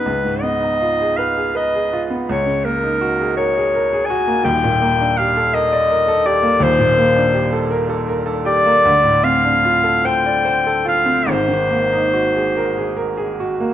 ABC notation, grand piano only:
X:1
M:6/8
L:1/16
Q:3/8=54
K:F#
V:1 name="Grand piano"
C,, G,, B, D E G B G B G E B, | C,, C, A, D F G A G A G F A, | [K:Eb] [E,,,E,,] B,, B, D G =A B d B A G B, | [E,,,E,,] B,, B, D G =A B A B A G B, |
D,, =A,, C D F =A c d c A F C | [A,,,A,,] E, B, E _G A B A B A G B, |]